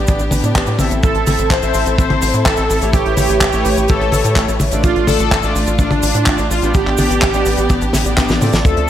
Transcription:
Already playing: string section B3 D4 G4
0.07 analog synth bass A1, analog polysynth B3 D4 G4 D5, kick, closed hi-hat, cabasa
0.19 analog synth bass A1, closed hi-hat, cabasa
0.31 analog synth bass A1, open hi-hat, high tom, cabasa
0.43 analog synth bass A2, analog polysynth B3 D4 G4 D5, closed hi-hat, cabasa
0.55 analog synth bass A1, analog polysynth B3 D4 G4 D5, kick, clap, closed hi-hat, cabasa
0.66 analog synth bass A2, closed hi-hat, cabasa
0.79 analog synth bass A1, analog polysynth C4 E4 A4 E5, open hi-hat, high tom, cabasa
0.91 analog synth bass A1, closed hi-hat, cabasa
1.03 analog synth bass A1, string section C4 E4 A4, analog polysynth A4, kick, closed hi-hat, cabasa
1.15 analog synth bass A1, closed hi-hat
1.26 analog synth bass A1, analog polysynth C4 E4 A4 E5, open hi-hat, high tom, cabasa
1.39 analog synth bass A1, closed hi-hat, cabasa
1.50 analog synth bass A1, analog polysynth C5, kick, clap, closed hi-hat, cabasa
1.62 analog synth bass A1, analog polysynth C4 E4 A4 E5, closed hi-hat, cabasa
1.74 analog synth bass A1, open hi-hat, cabasa
1.86 analog synth bass A1, closed hi-hat, cabasa
1.98 analog synth bass A1, analog polysynth C4 E4 A4 C5 E5, kick, closed hi-hat, cabasa
2.10 analog synth bass A1, closed hi-hat, high tom
2.22 analog synth bass A1, open hi-hat, cabasa
2.33 analog synth bass A2, closed hi-hat, cabasa
2.45 analog synth bass A1, analog polysynth C4 E4 A4 E5, kick, clap, closed hi-hat, cabasa
2.57 analog synth bass A1, closed hi-hat, cabasa
2.70 analog synth bass A1, open hi-hat, cabasa
2.82 analog synth bass A1, analog polysynth A3 E4 G4 C#5, closed hi-hat, cabasa
2.93 analog synth bass A1, string section A3 G4 B4 C#5, analog polysynth G4, kick, closed hi-hat, cabasa
3.06 analog synth bass A1, closed hi-hat
3.17 analog synth bass A1, analog polysynth A3 E4 G4 C#5, open hi-hat, high tom, cabasa
3.29 analog synth bass A1, closed hi-hat, cabasa
3.41 analog synth bass A1, kick, clap, closed hi-hat, cabasa
3.52 analog synth bass A1, analog polysynth A3 E4 G4 C#5, closed hi-hat, cabasa
3.65 analog synth bass A1, open hi-hat, cabasa
3.77 analog synth bass A1, closed hi-hat, cabasa
3.88 analog synth bass A1, analog polysynth A3 E4 G4 A4 C#5, kick, closed hi-hat, cabasa
4.01 analog synth bass A1, closed hi-hat
4.12 analog synth bass A1, open hi-hat, high tom, cabasa
4.24 analog synth bass A2, closed hi-hat, cabasa
4.36 analog synth bass A1, analog polysynth A3 E4 G4 C#5, kick, clap, closed hi-hat, cabasa
4.48 analog synth bass A1, closed hi-hat, cabasa
4.60 analog synth bass A1, open hi-hat, high tom, cabasa
4.71 analog synth bass A1, analog polysynth A3 D4 F4 D5, closed hi-hat, cabasa
4.84 analog synth bass A1, string section D4 F4, analog polysynth F4, kick, closed hi-hat, cabasa
4.96 analog synth bass A1, closed hi-hat
5.07 analog synth bass A1, analog polysynth A3 D4 F4 A4 D5, open hi-hat, high tom, cabasa
5.19 analog synth bass A1, closed hi-hat, cabasa
5.31 analog synth bass A1, kick, clap, closed hi-hat, cabasa
5.43 analog synth bass A1, analog polysynth A3 D4 F4 D5, closed hi-hat, cabasa
5.55 analog synth bass A1, open hi-hat, cabasa
5.67 analog synth bass A1, closed hi-hat, cabasa
5.79 analog synth bass A1, analog polysynth A3 D4 F4 D5, kick, closed hi-hat, cabasa
5.91 analog synth bass A1, closed hi-hat, high tom
6.02 analog synth bass A1, open hi-hat, cabasa
6.15 analog synth bass A2, closed hi-hat, cabasa
6.26 analog synth bass A1, analog polysynth A3 D4 F4 D5, kick, clap, closed hi-hat, cabasa
6.38 analog synth bass A1, closed hi-hat, cabasa
6.50 analog synth bass A1, analog polysynth F4, open hi-hat, cabasa
6.62 analog synth bass A1, analog polysynth B3 D4 G4 D5, closed hi-hat, cabasa
6.74 analog synth bass A1, string section B3 G4, analog polysynth G4, kick, closed hi-hat, cabasa
6.86 analog synth bass A1, clap, closed hi-hat
6.98 analog synth bass A1, analog polysynth B3 D4 G4 D5, open hi-hat, high tom, cabasa
7.10 analog synth bass A1, closed hi-hat, cabasa
7.22 analog synth bass A1, kick, clap, closed hi-hat, cabasa
7.34 analog synth bass A1, analog polysynth B3 D4 G4 D5, closed hi-hat, cabasa
7.45 analog synth bass A1, open hi-hat, cabasa
7.58 analog synth bass A1, closed hi-hat, cabasa
7.69 analog synth bass A1, analog polysynth B3 D4 G4 D5, kick, closed hi-hat, cabasa
7.81 analog synth bass A1, closed hi-hat, cabasa
7.93 analog synth bass A1, snare, open hi-hat, high tom, cabasa
8.05 analog synth bass A1, analog polysynth B3 D4 G4 D5, closed hi-hat, cabasa
8.17 analog synth bass A1, analog polysynth B3 D4 G4 D5, kick, snare, clap, closed hi-hat, cabasa
8.28 analog synth bass A1, snare, closed hi-hat, cabasa
8.41 analog synth bass A2, analog polysynth C4 F4 A4 D5, open hi-hat, high tom, cabasa
8.53 analog synth bass A1, snare, closed hi-hat, cabasa
8.65 analog synth bass D2, string section D3 A3 C4 F4 E5, analog polysynth A4, kick, closed hi-hat, cabasa
8.77 analog synth bass D2, closed hi-hat

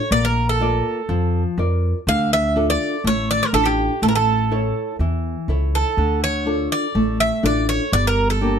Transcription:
Already playing: bouzouki C#5
0.11 upright bass A#1, nylon-string guitar A#3, bouzouki D5
0.25 bouzouki A#4
0.49 bouzouki A4
0.60 nylon-string guitar A#3 F4 D5
1.09 upright bass F2, nylon-string guitar F3
1.58 upright bass F2, nylon-string guitar F4 A#4 D5
2.07 upright bass D2, nylon-string guitar D3, bouzouki F5
2.33 bouzouki E5
2.56 nylon-string guitar D4 F4 A4
2.70 bouzouki D5
3.04 upright bass A1, nylon-string guitar A3, bouzouki C#5
3.31 bouzouki D5
3.43 bouzouki A#4
3.53 upright bass A1, nylon-string guitar D4 F4 A4, bouzouki A4
3.66 bouzouki G4
4.02 upright bass A1, nylon-string guitar A3, bouzouki A4
4.08 bouzouki A#4
4.15 bouzouki A4
4.51 nylon-string guitar E4 A4 C#5
4.99 upright bass E2, nylon-string guitar E3
5.48 upright bass C#2, nylon-string guitar E4 A4 C#5
5.75 bouzouki A4
5.97 upright bass D2, nylon-string guitar D3
6.24 bouzouki C#5
6.46 nylon-string guitar D4 F4 A4
6.72 bouzouki D5
6.95 upright bass A1, nylon-string guitar A3
7.20 bouzouki E5
7.43 upright bass A1, nylon-string guitar D4 F4 A4, bouzouki D5
7.69 bouzouki C#5
7.92 upright bass G1, nylon-string guitar G3, bouzouki D5
8.07 bouzouki A#4
8.30 bouzouki A4
8.41 nylon-string guitar A#3 D4 G4

